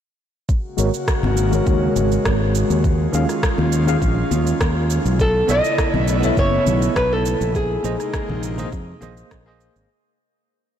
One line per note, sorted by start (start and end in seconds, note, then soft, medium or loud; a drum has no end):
0.49 2.82 C#3 medium
0.49 5.15 G#3 medium
0.49 2.82 A#3 medium
0.49 2.82 F#4 medium
0.49 kick medium
0.49 cabasa soft
0.77 0.89 G#1 medium
0.77 0.89 G#3 medium
0.77 0.89 F#4 medium
0.77 0.90 A#4 medium
0.77 0.90 C#5 medium
0.77 cabasa medium
0.94 cabasa soft
1.08 kick loud
1.08 cross-stick medium
1.08 cabasa soft
1.23 1.59 G#1 medium
1.23 high conga medium
1.23 low conga medium
1.37 cabasa medium
1.50 2.81 G#3 medium
1.50 2.82 F#4 medium
1.50 2.83 A#4 medium
1.50 high conga medium
1.50 cabasa soft
1.55 2.84 C#5 medium
1.67 1.87 D#2 loud
1.67 kick loud
1.67 cabasa soft
1.96 2.16 G#1 medium
1.96 high conga medium
1.96 cabasa medium
2.12 cabasa soft
2.25 2.62 G#1 medium
2.25 kick loud
2.25 cross-stick loud
2.25 cabasa soft
2.55 cabasa medium
2.70 3.06 D#2 loud
2.70 cabasa soft
2.84 5.17 D#3 medium
2.84 5.18 C#4 medium
2.84 5.17 F4 medium
2.84 kick loud
2.84 cabasa soft
3.12 3.24 D#2 medium
3.12 3.24 D#3 medium
3.12 3.24 C#4 medium
3.12 3.25 G#4 medium
3.12 3.25 F5 medium
3.12 cabasa medium
3.29 cross-stick soft
3.29 cabasa soft
3.43 kick loud
3.43 cross-stick loud
3.43 cabasa soft
3.58 3.94 D#2 medium
3.58 high conga medium
3.58 low conga medium
3.72 cabasa medium
3.86 3.97 D#3 medium
3.86 3.98 C#4 medium
3.86 3.98 G#4 medium
3.86 3.98 F5 medium
3.86 high conga medium
3.86 cabasa soft
4.02 4.22 A#1 loud
4.02 kick loud
4.02 cabasa soft
4.31 4.52 D#2 medium
4.31 high conga medium
4.31 cabasa medium
4.47 cabasa soft
4.60 4.97 D#2 medium
4.60 kick loud
4.60 cross-stick loud
4.60 cabasa soft
4.90 cabasa medium
5.05 5.42 B1 medium
5.05 cabasa soft
5.19 7.52 C#3 medium
5.19 7.52 A3 medium
5.19 7.52 B3 medium
5.19 7.53 E4 medium
5.19 5.50 A4 medium
5.19 kick loud
5.19 cabasa soft
5.47 5.59 B1 medium
5.47 5.59 B3 medium
5.47 5.60 A4 medium
5.47 5.60 C#5 medium
5.47 6.38 D#5 loud
5.47 5.60 E5 medium
5.47 cabasa medium
5.64 cabasa soft
5.78 kick loud
5.78 cross-stick loud
5.78 cabasa soft
5.94 6.30 B1 medium
5.94 high conga medium
5.94 low conga medium
6.08 cabasa medium
6.21 7.52 B3 medium
6.21 7.53 A4 medium
6.21 7.53 C#5 medium
6.21 high conga medium
6.21 cabasa soft
6.25 7.54 E5 medium
6.37 6.58 F#1 loud
6.37 6.96 C#5 loud
6.37 kick loud
6.37 cabasa soft
6.66 6.87 B1 loud
6.66 high conga medium
6.66 cabasa medium
6.82 cabasa soft
6.96 7.33 B1 medium
6.96 7.12 B4 medium
6.96 kick loud
6.96 cross-stick loud
6.96 cabasa soft
7.13 7.55 A4 medium
7.26 cabasa medium
7.41 7.77 A#1 medium
7.41 cabasa soft
7.55 9.88 C3 medium
7.55 9.88 G#3 medium
7.55 9.88 A#3 medium
7.55 9.88 D#4 medium
7.55 9.57 G#4 medium
7.55 kick loud
7.55 cabasa soft
7.83 7.95 A#1 medium
7.83 7.95 A#3 medium
7.83 7.95 G#4 medium
7.83 7.95 C5 medium
7.83 7.96 D#5 medium
7.83 cabasa medium
8.00 cross-stick soft
8.00 cabasa soft
8.14 kick loud
8.14 cross-stick loud
8.14 cabasa soft
8.29 8.65 A#1 medium
8.29 high conga medium
8.29 low conga medium
8.43 cabasa medium
8.57 8.68 A#3 medium
8.57 8.68 G#4 medium
8.57 8.69 C5 medium
8.57 8.69 D#5 medium
8.57 high conga medium
8.57 cabasa soft
8.72 8.93 F2 loud
8.72 kick loud
8.72 cabasa soft
9.01 9.22 A#1 loud
9.01 9.42 A#3 medium
9.01 9.43 G#4 medium
9.01 9.43 C5 medium
9.01 9.44 D#5 loud
9.01 high conga medium
9.01 cabasa medium
9.17 cabasa soft
9.31 9.68 A#1 medium
9.31 kick loud
9.31 cross-stick loud
9.31 cabasa soft
9.46 9.88 A#3 loud
9.46 9.88 G#4 medium
9.46 9.89 C5 medium
9.46 9.89 D#5 loud
9.61 cabasa medium
9.76 9.85 G#1 medium
9.76 cabasa soft